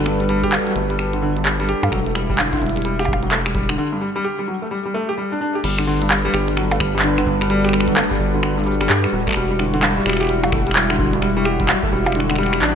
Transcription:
Already playing: analog synth bass G1, analog synth pad G3 D4 F#4 A4 B4
0.01 closed hi-hat
0.02 closed hi-hat
0.04 finger snap, closed hi-hat
0.06 felt piano G2, closed hi-hat
0.20 felt piano G3, closed hi-hat
0.29 felt piano G3, closed hi-hat
0.44 felt piano G4, kick, closed hi-hat
0.52 felt piano G3, clap, closed hi-hat, percussion blips
0.67 felt piano F#3, closed hi-hat
0.76 analog synth bass G1, felt piano A3, closed hi-hat
0.90 felt piano G3, closed hi-hat
0.99 felt piano G3, finger snap, closed hi-hat
1.13 felt piano D3, closed hi-hat
1.22 felt piano D3
1.37 felt piano G2, closed hi-hat
1.45 felt piano G3, clap, closed hi-hat
1.60 felt piano G3, closed hi-hat
1.69 felt piano G4, closed hi-hat
1.83 analog synth bass G2, felt piano G3, closed hi-hat, percussion blips
1.92 analog synth bass E1, felt piano F#3, analog synth pad E4, finger snap, kick, closed hi-hat
2.06 felt piano A3, closed hi-hat
2.15 felt piano G3, finger snap, closed hi-hat
2.30 felt piano G3, kick
2.38 felt piano D3, clap, closed hi-hat, percussion blips
2.53 felt piano D3, kick, closed hi-hat
2.62 analog synth bass E1, felt piano G2, closed hi-hat
2.67 closed hi-hat
2.69 closed hi-hat
2.76 felt piano G3, closed hi-hat
2.82 closed hi-hat
2.85 felt piano G3, closed hi-hat
2.99 felt piano G4, finger snap, closed hi-hat, percussion blips
3.01 closed hi-hat
3.03 closed hi-hat, percussion blips
3.08 felt piano G3, kick
3.13 percussion blips
3.23 felt piano F#3, closed hi-hat
3.31 felt piano A3, clap, closed hi-hat
3.46 felt piano G3, finger snap, closed hi-hat
3.55 felt piano G3, kick, closed hi-hat
3.69 felt piano D3, finger snap, closed hi-hat
3.78 felt piano D3
3.92 felt piano G2
4.01 felt piano G3
4.16 felt piano G3
4.25 felt piano G4
4.39 felt piano G3
4.48 felt piano F#3
4.62 felt piano A3
4.71 felt piano G3
4.86 felt piano G3
4.94 felt piano A3
5.09 felt piano G4
5.18 felt piano G3
5.32 felt piano D4
5.41 felt piano D4
5.55 felt piano G4
5.64 analog synth bass G1, felt piano G3, analog synth pad G3 D4 F#4 A4 B4, closed hi-hat, crash
5.78 felt piano D3, finger snap
5.87 felt piano D3
6.02 felt piano G2, closed hi-hat
6.11 felt piano G3, clap, closed hi-hat, percussion blips
6.25 felt piano G3
6.34 analog synth bass G1, felt piano G4, finger snap
6.48 felt piano G3, closed hi-hat
6.57 felt piano F#3, finger snap, closed hi-hat
6.71 felt piano A3, percussion blips, shaker
6.73 shaker
6.75 shaker
6.77 shaker
6.79 felt piano G3, finger snap, kick, shaker
6.95 felt piano G3
6.99 clap
7.04 felt piano D3, closed hi-hat
7.18 felt piano D3, finger snap, closed hi-hat, shaker
7.27 felt piano G2, kick
7.41 felt piano G3, finger snap, closed hi-hat
7.50 felt piano G3, closed hi-hat
7.65 felt piano G4, finger snap
7.69 finger snap
7.73 felt piano G3, finger snap
7.80 finger snap
7.88 felt piano F#3, kick, closed hi-hat, shaker
7.97 felt piano A3, finger snap, clap, closed hi-hat, percussion blips
8.11 felt piano G3, kick
8.20 analog synth bass G1, felt piano G3
8.34 felt piano D3
8.43 felt piano D3, finger snap, closed hi-hat
8.57 felt piano G2, shaker
8.63 shaker
8.66 felt piano G3, shaker
8.71 shaker
8.74 shaker
8.81 felt piano G3, finger snap
8.90 analog synth bass G2, felt piano G4, clap, closed hi-hat
9.04 felt piano G3, finger snap, closed hi-hat
9.13 analog synth bass D1, felt piano F#3
9.27 felt piano A3, finger snap, kick, closed hi-hat
9.29 finger snap
9.31 finger snap
9.33 finger snap
9.34 analog synth bass E1, felt piano G3, analog synth pad G3 E4, finger snap, closed hi-hat
9.51 felt piano G3
9.59 felt piano D3, finger snap
9.74 felt piano D3, closed hi-hat
9.83 felt piano G2, finger snap, clap, closed hi-hat, percussion blips
9.97 felt piano G3
10.06 analog synth bass E1, felt piano G3, finger snap
10.10 finger snap
10.13 finger snap
10.17 finger snap
10.20 felt piano G4, finger snap, closed hi-hat
10.23 finger snap
10.25 finger snap
10.27 felt piano G3, finger snap, closed hi-hat
10.44 felt piano F#3, percussion blips, shaker
10.52 felt piano A3, finger snap, kick
10.67 felt piano G3, closed hi-hat
10.71 finger snap
10.76 felt piano G3, clap, closed hi-hat
10.90 felt piano D3, finger snap, closed hi-hat, shaker
10.99 felt piano D3, kick
11.13 felt piano G2, closed hi-hat
11.22 felt piano G3, finger snap, closed hi-hat
11.37 felt piano G3
11.45 felt piano G4, finger snap
11.60 felt piano G3, kick, closed hi-hat, shaker
11.69 felt piano F#3, finger snap, clap, closed hi-hat, percussion blips
11.83 felt piano A3, kick
11.92 analog synth bass E1, felt piano G3
12.06 felt piano G3, closed hi-hat, percussion blips
12.12 felt piano D3, finger snap, closed hi-hat
12.20 finger snap
12.30 felt piano D3, finger snap, shaker
12.36 felt piano G3, finger snap, shaker
12.38 finger snap
12.43 finger snap, shaker
12.46 finger snap
12.53 felt piano G3, finger snap, closed hi-hat
12.62 analog synth bass A1, felt piano D4, clap, closed hi-hat

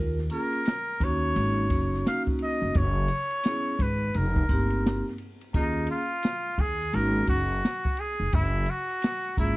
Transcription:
Already playing: upright bass D#2, vibraphone F4 A#4
0.19 snare
0.30 vibraphone A#3 C#4 F4 G#4, muted trumpet A#4, ride
0.53 ride
0.65 snare, hi-hat pedal, ride
1.00 upright bass D#2, vibraphone A#3 C#4 D#4 F#4, muted trumpet C#5, kick, ride
1.36 upright bass G#1, ride
1.70 upright bass F#1, kick, ride
1.94 snare
2.05 vibraphone A#3 C#4 D#4 F#4, muted trumpet F5, snare, hi-hat pedal, ride
2.27 kick
2.39 ride
2.43 muted trumpet D#5
2.62 upright bass F1
2.74 upright bass F#1, muted trumpet C#5, kick, ride
3.08 ride
3.31 ride
3.43 vibraphone B3 C#4 E4 G#4, snare, hi-hat pedal, ride
3.79 upright bass G#1, muted trumpet B4, kick, ride
4.14 upright bass F1, muted trumpet A#4, ride
4.36 kick
4.49 upright bass G1, vibraphone A3 C4 D#4 G4, kick, ride
4.55 vibraphone A#3
4.70 ride
4.86 snare, hi-hat pedal, ride
5.08 snare
5.18 ride
5.41 ride
5.53 upright bass D#2, vibraphone A#3 C#4 F4 G#4, muted trumpet D#4, kick, ride
5.87 muted trumpet F4, ride
6.23 snare, hi-hat pedal, ride
6.58 upright bass D#2, muted trumpet G#4, kick, ride
6.82 ride
6.93 upright bass G#1, vibraphone A#3 C#4 D#4 F#4, muted trumpet A#4, ride
7.27 upright bass F#1, muted trumpet F#4, kick, ride
7.49 ride
7.65 snare, hi-hat pedal, ride
7.85 kick
7.97 muted trumpet G#4, ride
8.20 upright bass F1
8.32 upright bass F#1, muted trumpet E4, kick, ride
8.66 muted trumpet F#4, ride
8.89 ride
9.02 snare, hi-hat pedal, ride
9.37 upright bass G#1, vibraphone A#3 C#4 F4 G#4, muted trumpet E4, kick, ride

